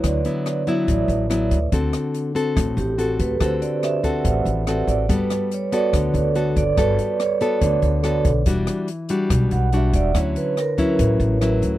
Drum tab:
HH |xxxxxxxx|xxxxxxxx|xxxxxxxx|xxxxxxxx|
SD |r-r---r-|-r--r---|r-r---r-|-r--r---|
BD |o---o--o|o---o--o|o--oo---|o---o--o|

HH |xxxxxxxx|xxxxxxxx|xxxxxxxx|
SD |r-r---r-|-r--r---|r-r---r-|
BD |o---o--o|o---o--o|o--oo---|